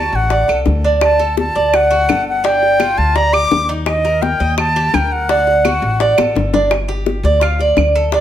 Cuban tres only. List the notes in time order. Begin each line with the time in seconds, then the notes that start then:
Already playing: F#4
0.31 D5
0.49 A4
0.85 D4
1.19 A4
1.55 D5
1.91 F#4
2.09 A4
2.44 D4
2.80 F4
3.16 D5
3.33 G4
3.69 D#4
4.05 A#4
4.40 D#5
4.76 G4
4.94 A#4
5.30 D4
5.65 F#4
6.01 D5
6.18 A4
6.54 D4
6.88 G4
7.25 D5
7.42 F4
7.61 D5
7.95 A4
8.14 D4